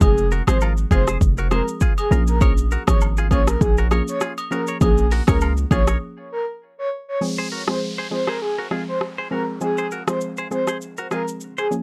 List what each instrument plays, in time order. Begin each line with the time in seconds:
0.01 808-style bass F1, synth pluck F3 G#3 C4 G#4, soft synth lead G#4, kick, high agogo, shaker
0.18 shaker
0.31 clean electric guitar F#4 A#4, shaker
0.47 808-style bass G#1, synth pluck F3 G#3 C4 G#4, clean electric guitar G#4 C5, soft synth lead C5, cross-stick, high agogo, shaker
0.61 clean electric guitar F4 A#4, low woodblock, shaker
0.77 shaker
0.91 808-style bass F1, synth pluck F3 G#3 C4 G#4, clean electric guitar F4 G#4, soft synth lead C5, kick, high agogo, shaker
1.07 clean electric guitar G#4 C5, cross-stick, shaker
1.21 808-style bass F1, kick, shaker
1.38 clean electric guitar F#4 A#4, shaker
1.51 synth pluck F3 G#3 C4 G#4, clean electric guitar G#4 C5, soft synth lead A#4, cross-stick, high agogo, shaker
1.68 shaker
1.81 clean electric guitar F4 G#4, kick, shaker
1.98 soft synth lead G#4, high agogo, shaker
2.11 808-style bass A#1, synth pluck F3 A#3 C#4 G#4, clean electric guitar F4 A#4, shaker
2.27 soft synth lead A#4, shaker
2.41 synth pluck F3 A#3 C#4 G#4, clean electric guitar A#4 C#5, kick, high agogo, shaker
2.58 shaker
2.71 clean electric guitar F#4 A#4, shaker
2.87 808-style bass G#1, synth pluck F3 A#3 C#4 G#4, soft synth lead C#5, kick, cross-stick, high agogo, shaker
3.01 low woodblock, shaker
3.17 clean electric guitar F4 G#4, shaker
3.31 808-style bass A#1, synth pluck F3 A#3 C#4 G#4, clean electric guitar F4 G#4, soft synth lead C#5, kick, high agogo, shaker
3.47 soft synth lead A#4, cross-stick, shaker
3.61 808-style bass A#1, soft synth lead G#4, kick, shaker
3.77 clean electric guitar F#4 A#4, shaker
3.91 synth pluck F3 A#3 C#4 G#4, clean electric guitar A#4 C#5, cross-stick, high agogo, shaker
4.08 soft synth lead C#5, shaker
4.21 clean electric guitar F4 G#4, cross-stick, shaker
4.38 high agogo, shaker
4.51 synth pluck F3 A#3 C#4 G#4, clean electric guitar F#4 A#4, soft synth lead A#4, shaker
4.67 clean electric guitar A#4 C#5, shaker
4.81 808-style bass A#1, synth pluck F3 A#3 C#4 G#4, soft synth lead G#4, kick, high agogo, shaker
4.98 shaker
5.11 clean electric guitar F#4 A#4, open hi-hat, shaker
5.27 808-style bass C#2, synth pluck F3 A#3 C#4 G#4, soft synth lead A#4, clean electric guitar A#4 C#5, kick, cross-stick, high agogo, shaker
5.41 clean electric guitar F4 A#4, low woodblock, shaker
5.57 shaker
5.71 808-style bass A#1, synth pluck F3 A#3 C#4 G#4, clean electric guitar F4 G#4, soft synth lead C#5, kick, high agogo, shaker
5.87 clean electric guitar A#4 C#5, cross-stick, shaker
6.32 soft synth lead A#4
6.79 soft synth lead C#5
7.08 soft synth lead C#5
7.21 synth pluck F3 G#3 C4 G#4, downlifter
7.38 clean electric guitar G#4 C5
7.52 clean electric guitar F#4 A#4
7.67 synth pluck F3 G#3 C4 G#4, soft synth lead C5, cross-stick
7.98 clean electric guitar G#4 C5
8.11 synth pluck F3 G#3 C4 G#4, soft synth lead C5
8.27 clean electric guitar G#4 C5, soft synth lead A#4, cross-stick
8.42 soft synth lead G#4
8.58 clean electric guitar F#4 A#4
8.71 synth pluck F3 G#3 C4 G#4, clean electric guitar F4 G#4, cross-stick
8.88 soft synth lead C5
9.01 cross-stick
9.18 clean electric guitar G#4 C5
9.31 synth pluck F3 G#3 C4 G#4, clean electric guitar F#4 A#4, soft synth lead A#4
9.61 synth pluck F3 G#3 C4 G#4, soft synth lead G#4, shaker
9.78 clean electric guitar G#4 C5, shaker
9.91 clean electric guitar F#4 A#4, shaker
10.07 synth pluck F3 G#3 C4 G#4, soft synth lead C5, cross-stick, shaker
10.21 shaker
10.37 clean electric guitar G#4 C5, shaker
10.51 synth pluck F3 G#3 C4 G#4, soft synth lead C5, shaker
10.67 clean electric guitar G#4 C5, cross-stick, shaker
10.81 shaker
10.97 clean electric guitar F#4 A#4, shaker
11.11 synth pluck F3 G#3 C4 G#4, clean electric guitar F4 G#4, soft synth lead A#4, cross-stick, shaker
11.28 shaker
11.41 shaker
11.58 soft synth lead G#4, clean electric guitar G#4 C5, shaker
11.71 synth pluck F3 A#3 C#4 G#4, shaker